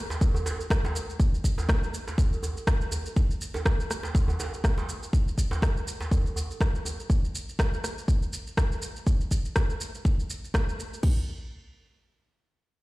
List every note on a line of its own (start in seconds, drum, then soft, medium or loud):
0.10 djembe slap medium
0.10 shaker soft
0.21 kick loud
0.21 djembe tone medium
0.21 shaker medium
0.35 djembe tone medium
0.35 shaker soft
0.46 djembe slap medium
0.46 shaker loud
0.61 shaker soft
0.70 kick loud
0.70 cross-stick loud
0.70 shaker medium
0.84 djembe slap medium
0.84 djembe tone medium
0.84 shaker soft
0.96 shaker medium
1.10 shaker soft
1.20 kick loud
1.20 shaker soft
1.34 shaker soft
1.44 kick medium
1.44 shaker medium
1.58 djembe slap medium
1.58 djembe tone medium
1.58 shaker soft
1.69 kick loud
1.69 cross-stick loud
1.69 shaker medium
1.84 shaker soft
1.94 shaker medium
2.08 djembe slap medium
2.08 shaker soft
2.18 kick loud
2.18 djembe tone medium
2.18 shaker medium
2.33 shaker soft
2.43 djembe tone medium
2.43 shaker medium
2.57 shaker soft
2.67 kick loud
2.67 cross-stick loud
2.67 shaker medium
2.81 shaker soft
2.92 djembe tone medium
2.92 shaker medium
3.06 shaker soft
3.16 kick loud
3.16 shaker soft
3.31 shaker soft
3.41 shaker medium
3.54 djembe slap medium
3.54 djembe tone medium
3.54 shaker soft
3.66 kick loud
3.66 cross-stick medium
3.66 shaker soft
3.80 shaker soft
3.91 cross-stick medium
3.91 shaker medium
4.03 djembe slap medium
4.03 shaker soft
4.15 kick loud
4.15 djembe tone medium
4.15 shaker soft
4.28 djembe tone medium
4.28 shaker soft
4.40 djembe slap medium
4.40 shaker medium
4.54 shaker soft
4.64 kick loud
4.64 cross-stick medium
4.64 shaker soft
4.78 djembe slap medium
4.78 djembe tone medium
4.78 shaker soft
4.89 shaker medium
5.03 shaker soft
5.13 kick loud
5.13 shaker soft
5.28 shaker soft
5.38 kick medium
5.38 shaker medium
5.51 djembe slap medium
5.51 djembe tone medium
5.51 shaker soft
5.62 kick loud
5.62 cross-stick medium
5.62 shaker soft
5.77 shaker soft
5.88 shaker medium
6.00 djembe slap medium
6.00 shaker soft
6.11 kick loud
6.11 djembe tone medium
6.11 shaker soft
6.26 shaker soft
6.36 djembe tone medium
6.36 shaker medium
6.51 shaker soft
6.61 kick loud
6.61 cross-stick medium
6.61 shaker soft
6.75 shaker soft
6.85 djembe tone medium
6.85 shaker medium
7.00 shaker soft
7.10 kick loud
7.10 shaker soft
7.25 shaker soft
7.35 shaker medium
7.49 shaker soft
7.59 kick loud
7.59 cross-stick loud
7.59 shaker soft
7.74 shaker soft
7.84 cross-stick medium
7.84 shaker medium
7.98 shaker soft
8.08 kick loud
8.08 shaker soft
8.22 shaker soft
8.33 shaker medium
8.47 shaker soft
8.57 kick loud
8.57 cross-stick medium
8.57 shaker soft
8.72 shaker soft
8.82 shaker medium
8.96 shaker soft
9.07 kick loud
9.07 shaker soft
9.21 shaker soft
9.31 kick medium
9.31 shaker medium
9.45 shaker soft
9.56 kick loud
9.56 cross-stick medium
9.56 shaker soft
9.70 shaker soft
9.81 shaker medium
9.95 shaker soft
10.05 kick loud
10.05 shaker soft
10.20 shaker soft
10.30 shaker medium
10.44 shaker soft
10.54 kick loud
10.54 cross-stick loud
10.54 shaker soft
10.69 shaker soft
10.80 shaker medium
10.94 shaker soft
11.03 kick loud
11.03 crash medium